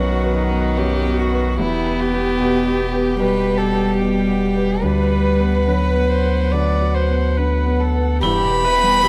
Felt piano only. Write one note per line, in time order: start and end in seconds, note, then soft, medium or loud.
0.00 1.62 B1 soft
0.00 0.78 F#2 soft
0.00 0.50 B3 soft
0.00 0.24 B4 soft
0.24 0.66 B4 soft
0.50 0.94 B3 soft
0.78 1.21 F#2 soft
1.04 1.48 B3 soft
1.32 1.60 B4 soft
1.60 3.15 E2 medium
1.87 2.29 B4 soft
2.14 2.56 B3 soft
2.40 2.82 B2 soft
2.66 3.09 B3 soft
2.93 3.35 B4 soft
3.19 3.62 B2 soft
3.45 3.89 B4 soft
3.73 4.16 B3 soft
4.00 4.44 B2 soft
4.27 4.72 B3 soft
4.55 4.83 B4 soft
4.83 6.48 D2 soft
5.10 5.56 B4 soft
5.39 5.84 B3 soft
5.67 6.13 D3 soft
5.95 6.41 B3 soft
6.24 6.70 B4 soft
6.53 8.19 D2 soft
6.82 7.27 F#4 soft
7.09 7.55 B3 soft
7.38 7.83 D3 soft
7.66 8.12 B3 soft
7.95 8.23 B4 soft
8.23 9.09 E2 medium
8.50 8.94 B4 medium
8.77 9.09 B3 medium
9.04 9.09 B2 medium